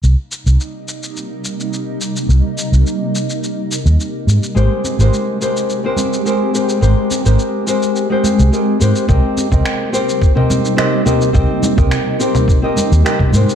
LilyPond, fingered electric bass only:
\new Staff \with { instrumentName = "Fingered electric bass" } { \clef bass \time 4/4 \key c \phrygian \tempo 4 = 106 c,16 r8 c,16 r2. | c,16 r8 c,16 r4. r16 ees,16 r8 aes,16 r16 | aes,,16 r8 aes,,16 r2. | aes,,16 r8 aes,,16 r4. r16 c,16 r8 aes,16 r16 |
c,16 r8 c,16 r2. | c,16 r8 c,16 r4. r16 ees,16 r8 aes,16 r16 | }